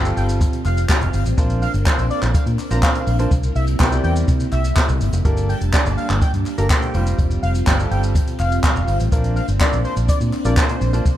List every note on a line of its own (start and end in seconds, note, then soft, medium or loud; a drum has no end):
0.00 0.11 G1 loud
0.00 1.34 G3 medium
0.00 3.27 C4 medium
0.00 1.36 F4 medium
0.00 0.12 G5 loud
0.05 0.57 G3 medium
0.05 0.57 C4 medium
0.05 0.57 F4 medium
0.05 0.57 G4 medium
0.05 0.57 A4 medium
0.05 closed hi-hat medium
0.05 shaker medium
0.17 0.44 G1 loud
0.17 0.27 G5 medium
0.17 open hi-hat medium
0.17 shaker soft
0.29 closed hi-hat medium
0.29 shaker medium
0.41 kick loud
0.41 closed hi-hat medium
0.41 shaker medium
0.53 closed hi-hat medium
0.53 shaker medium
0.65 0.84 F1 loud
0.65 0.85 F5 medium
0.65 clap medium
0.65 open hi-hat medium
0.65 shaker medium
0.77 closed hi-hat medium
0.77 shaker medium
0.89 1.24 F5 medium
0.89 kick loud
0.89 snare medium
0.89 clap medium
0.89 clap loud
0.89 shaker medium
1.01 1.11 F1 medium
1.01 closed hi-hat medium
1.01 shaker medium
1.13 1.23 G1 medium
1.13 open hi-hat medium
1.13 shaker medium
1.26 1.35 A1 medium
1.26 closed hi-hat medium
1.26 shaker medium
1.37 1.65 A#1 loud
1.37 5.21 A#3 medium
1.37 1.64 C4 loud
1.37 1.64 D4 medium
1.37 3.29 D4 medium
1.37 1.64 F4 medium
1.37 1.64 A#4 medium
1.37 1.64 C5 loud
1.37 kick loud
1.37 closed hi-hat medium
1.37 shaker medium
1.50 closed hi-hat medium
1.50 shaker medium
1.62 1.72 F5 medium
1.62 open hi-hat medium
1.62 shaker medium
1.74 1.83 G1 medium
1.74 closed hi-hat medium
1.74 shaker medium
1.86 2.32 C4 medium
1.86 2.32 D4 medium
1.86 2.32 F4 medium
1.86 2.32 A#4 medium
1.86 2.06 C5 medium
1.86 2.32 C5 medium
1.86 kick loud
1.86 snare medium
1.86 clap loud
1.86 shaker medium
1.98 2.07 A#1 loud
1.98 closed hi-hat medium
1.98 shaker medium
2.10 2.20 D5 medium
2.10 open hi-hat medium
2.10 shaker soft
2.22 2.32 A#1 medium
2.22 clap medium
2.22 closed hi-hat medium
2.22 shaker medium
2.34 2.44 F5 medium
2.34 muted fingered electric bass stroke medium
2.34 kick loud
2.34 closed hi-hat medium
2.34 shaker medium
2.46 2.56 A#2 loud
2.46 closed hi-hat medium
2.46 shaker medium
2.59 clap medium
2.59 open hi-hat medium
2.59 shaker medium
2.71 2.80 A#1 medium
2.71 2.77 C4 medium
2.71 2.77 D4 medium
2.71 2.77 F4 medium
2.71 2.77 A#4 medium
2.71 2.78 C5 medium
2.71 2.81 A#5 medium
2.71 closed hi-hat medium
2.71 shaker medium
2.83 3.02 C4 medium
2.83 3.02 D4 medium
2.83 3.03 F4 medium
2.83 3.17 F5 medium
2.83 kick loud
2.83 snare medium
2.83 clap loud
2.83 clap medium
2.83 shaker medium
2.95 closed hi-hat medium
2.95 shaker medium
3.07 3.26 A#1 medium
3.07 open hi-hat medium
3.07 shaker medium
3.19 3.31 C4 medium
3.19 3.31 D4 medium
3.19 3.31 F4 medium
3.19 3.31 A#4 medium
3.19 3.32 C5 medium
3.19 closed hi-hat medium
3.19 shaker medium
3.31 3.50 C2 loud
3.31 5.23 C3 medium
3.31 9.08 G3 medium
3.31 5.23 E4 medium
3.31 kick loud
3.31 closed hi-hat medium
3.31 shaker medium
3.43 closed hi-hat medium
3.43 shaker medium
3.55 3.74 C2 loud
3.55 3.65 E5 medium
3.55 open hi-hat medium
3.55 shaker medium
3.67 closed hi-hat medium
3.67 shaker medium
3.79 3.98 C2 loud
3.79 3.86 C4 medium
3.79 3.86 E4 medium
3.79 3.86 G4 medium
3.79 3.86 A#4 medium
3.79 3.86 C5 loud
3.79 3.99 G5 medium
3.79 kick loud
3.79 snare medium
3.79 clap loud
3.79 shaker medium
3.91 4.44 C4 medium
3.91 4.44 E4 medium
3.91 4.44 G4 medium
3.91 4.44 A#4 medium
3.91 4.44 D5 medium
3.91 closed hi-hat medium
3.91 shaker medium
4.04 4.22 E2 loud
4.04 4.14 G5 medium
4.04 open hi-hat medium
4.04 shaker soft
4.16 closed hi-hat medium
4.16 shaker medium
4.28 4.47 C3 loud
4.28 kick loud
4.28 closed hi-hat medium
4.28 shaker medium
4.40 closed hi-hat medium
4.40 shaker medium
4.52 4.71 C2 medium
4.52 4.86 E5 medium
4.52 clap medium
4.52 open hi-hat medium
4.52 shaker medium
4.65 closed hi-hat medium
4.65 shaker medium
4.76 kick loud
4.76 snare medium
4.76 clap loud
4.76 clap medium
4.76 shaker medium
4.89 4.98 C2 medium
4.89 closed hi-hat medium
4.89 shaker medium
5.01 5.10 G1 loud
5.01 open hi-hat medium
5.01 shaker medium
5.13 5.22 F1 loud
5.13 closed hi-hat medium
5.13 shaker medium
5.25 5.53 G1 loud
5.25 5.51 A#3 medium
5.25 6.93 A#3 medium
5.25 5.51 D4 medium
5.25 6.93 D4 medium
5.25 5.51 G4 medium
5.25 5.51 A4 medium
5.25 5.51 A#4 loud
5.25 6.93 A5 medium
5.25 kick loud
5.25 closed hi-hat medium
5.25 shaker medium
5.37 closed hi-hat medium
5.37 shaker medium
5.49 5.59 G5 medium
5.49 open hi-hat medium
5.49 shaker medium
5.61 5.70 F1 medium
5.61 closed hi-hat medium
5.61 shaker medium
5.73 6.19 A#3 medium
5.73 6.19 D4 medium
5.73 6.19 G4 medium
5.73 6.19 A4 medium
5.73 6.19 A#4 medium
5.73 5.93 D5 medium
5.73 kick loud
5.73 snare medium
5.73 clap loud
5.73 shaker medium
5.86 5.95 G1 medium
5.86 closed hi-hat medium
5.86 shaker medium
5.97 6.07 F5 medium
5.97 open hi-hat medium
5.97 shaker soft
6.10 6.19 G1 medium
6.10 clap medium
6.10 closed hi-hat medium
6.10 shaker medium
6.22 6.31 G5 loud
6.22 muted fingered electric bass stroke medium
6.22 kick loud
6.22 closed hi-hat medium
6.22 shaker medium
6.34 6.43 G2 loud
6.34 closed hi-hat medium
6.34 shaker medium
6.46 clap medium
6.46 open hi-hat medium
6.46 shaker medium
6.58 6.67 G1 medium
6.58 6.64 A#3 medium
6.58 6.65 D4 medium
6.58 6.65 G4 medium
6.58 6.65 A4 medium
6.58 6.65 A#4 medium
6.58 6.68 A#5 medium
6.58 closed hi-hat medium
6.58 shaker medium
6.70 6.90 A#3 medium
6.70 6.90 D4 medium
6.70 6.90 G4 medium
6.70 6.90 A4 medium
6.70 6.90 C5 medium
6.70 7.04 G5 medium
6.70 kick loud
6.70 snare medium
6.70 clap loud
6.70 clap medium
6.70 shaker medium
6.82 closed hi-hat medium
6.82 shaker medium
6.94 7.13 F1 loud
6.94 7.52 G3 medium
6.94 7.52 C4 medium
6.94 11.02 C4 medium
6.94 9.10 F4 medium
6.94 7.53 F4 medium
6.94 7.53 G4 medium
6.94 7.53 C5 medium
6.94 open hi-hat medium
6.94 shaker medium
7.07 closed hi-hat medium
7.07 shaker medium
7.19 7.37 F1 loud
7.19 kick loud
7.19 closed hi-hat medium
7.19 shaker medium
7.31 closed hi-hat medium
7.31 shaker medium
7.43 7.61 F1 medium
7.43 7.52 F5 medium
7.43 open hi-hat medium
7.43 shaker medium
7.55 closed hi-hat medium
7.55 shaker medium
7.67 7.85 G1 loud
7.67 7.73 G3 medium
7.67 7.73 C4 medium
7.67 7.74 F4 medium
7.67 7.74 G4 medium
7.67 7.74 D5 loud
7.67 7.86 G5 medium
7.67 kick loud
7.67 snare medium
7.67 clap loud
7.67 shaker medium
7.79 8.31 G3 medium
7.79 8.31 C4 medium
7.79 8.31 F4 medium
7.79 8.31 G4 medium
7.79 8.31 A4 medium
7.79 closed hi-hat medium
7.79 shaker medium
7.91 8.19 G1 medium
7.91 8.01 G5 medium
7.91 open hi-hat medium
7.91 shaker soft
8.03 closed hi-hat medium
8.03 shaker medium
8.15 kick loud
8.15 closed hi-hat medium
8.15 shaker medium
8.27 closed hi-hat medium
8.27 shaker medium
8.40 8.58 F1 loud
8.40 8.59 F5 medium
8.40 clap medium
8.40 open hi-hat medium
8.40 shaker medium
8.52 closed hi-hat medium
8.52 shaker medium
8.64 8.98 F5 medium
8.64 kick loud
8.64 snare medium
8.64 clap loud
8.64 clap medium
8.64 shaker medium
8.76 8.85 F1 medium
8.76 closed hi-hat medium
8.76 shaker medium
8.88 8.97 G1 medium
8.88 open hi-hat medium
8.88 shaker medium
9.00 9.09 A1 medium
9.00 closed hi-hat medium
9.00 shaker medium
9.12 9.40 A#1 loud
9.12 9.38 A#3 medium
9.12 11.17 A#3 medium
9.12 9.38 C4 medium
9.12 11.04 D4 medium
9.12 9.38 D4 medium
9.12 9.38 F4 medium
9.12 9.38 A#4 loud
9.12 kick loud
9.12 closed hi-hat medium
9.12 shaker medium
9.24 closed hi-hat medium
9.24 shaker medium
9.36 9.46 F5 medium
9.36 open hi-hat medium
9.36 shaker medium
9.48 9.57 G1 loud
9.48 closed hi-hat medium
9.48 shaker medium
9.60 10.06 A#3 medium
9.60 10.06 C4 medium
9.60 10.06 D4 medium
9.60 10.06 F4 medium
9.60 10.06 A#4 medium
9.60 9.80 D5 medium
9.60 kick loud
9.60 snare medium
9.60 clap loud
9.60 shaker medium
9.72 9.82 A#1 medium
9.72 closed hi-hat medium
9.72 shaker medium
9.85 9.94 C5 medium
9.85 open hi-hat medium
9.85 shaker soft
9.97 10.06 A#1 medium
9.97 closed hi-hat medium
9.97 shaker medium
10.09 10.19 D5 medium
10.09 kick loud
10.09 closed hi-hat loud
10.09 shaker medium
10.21 10.30 A#2 loud
10.21 closed hi-hat medium
10.21 shaker medium
10.33 clap medium
10.33 open hi-hat medium
10.33 shaker medium
10.45 10.54 A#1 medium
10.45 10.51 A#3 medium
10.45 10.52 C4 medium
10.45 10.52 D4 medium
10.45 10.52 F4 medium
10.45 10.52 A#4 medium
10.45 10.55 D5 medium
10.45 closed hi-hat medium
10.45 shaker medium
10.57 10.77 A#3 medium
10.57 10.77 C4 medium
10.57 10.77 D4 medium
10.57 10.77 F4 medium
10.57 10.77 A#4 medium
10.57 10.91 C5 medium
10.57 kick loud
10.57 snare medium
10.57 clap loud
10.57 clap medium
10.57 shaker medium
10.69 closed hi-hat medium
10.69 shaker medium
10.81 11.00 A#1 medium
10.81 open hi-hat medium
10.81 shaker medium
10.93 11.05 A#3 medium
10.93 11.05 C4 medium
10.93 11.05 D4 medium
10.93 11.06 F4 medium
10.93 11.06 C5 medium
10.93 closed hi-hat medium
10.93 shaker medium
11.05 11.17 C2 loud
11.05 11.17 C3 medium
11.05 11.17 G3 medium
11.05 11.17 E4 medium
11.05 kick loud
11.05 closed hi-hat medium
11.05 shaker medium